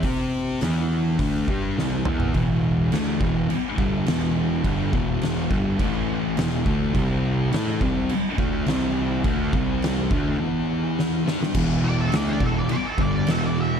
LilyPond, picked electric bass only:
\new Staff \with { instrumentName = "Picked electric bass" } { \clef bass \time 4/4 \key e \minor \tempo 4 = 104 c4 e,4 d,8 g,8 c,8 e,8 | e,,4 d,8 e,,8 r8 g,,8 e,,4 | g,,8 e,,4 g,,8 a,,4 e,,8 d,8 | c,4 a,8 c,8 r8 d,8 c,4 |
d,8 c,4 d,8 r2 | e,,4 d,8 e,,8 r8 g,,8 e,,4 | }